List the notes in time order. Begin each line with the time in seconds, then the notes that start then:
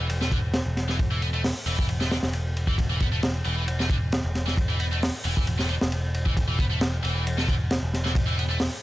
Already playing: E1
0.09 ride
0.21 A3, snare
0.32 D3, kick, ride
0.54 snare, ride
0.66 E1
0.77 snare, ride
0.89 E3, snare
0.99 kick, ride
1.11 E3, ride
1.22 B3, ride
1.34 A3, ride
1.44 snare, open hi-hat
1.66 E1 E3, ride
1.78 E3, kick
1.89 ride
2.01 A3, snare
2.11 D3, snare, ride
2.23 E1, snare, ride
2.33 ride
2.57 ride
2.67 E3, kick
2.78 E1, kick, ride
2.90 E3
3.00 B3, kick, ride
3.12 A3
3.23 snare, ride
3.45 E1 E3, ride
3.57 E3
3.68 ride
3.80 A3, snare
3.90 D3, kick, ride
4.12 snare, ride
4.24 E1
4.35 snare, ride
4.47 E3, snare
4.57 kick, ride
4.69 E3, ride
4.79 B3, ride
4.92 A3, ride
5.03 snare, open hi-hat
5.25 E1 E3, ride
5.36 E3, kick
5.47 ride
5.59 A3, snare
5.69 D3, ride
5.81 E1, snare
5.92 ride
6.14 ride
6.26 E3, kick
6.37 E1, kick, ride
6.48 E3
6.59 B3, kick, ride
6.71 A3
6.81 snare, ride
7.03 E1 E3, ride
7.15 E3
7.27 ride
7.38 A3, snare
7.48 D3, kick, ride
7.71 snare, ride
7.83 E1
7.94 snare, ride
8.05 E3, snare
8.15 kick, ride
8.27 E3, ride
8.37 B3, ride
8.50 A3, ride
8.60 snare, open hi-hat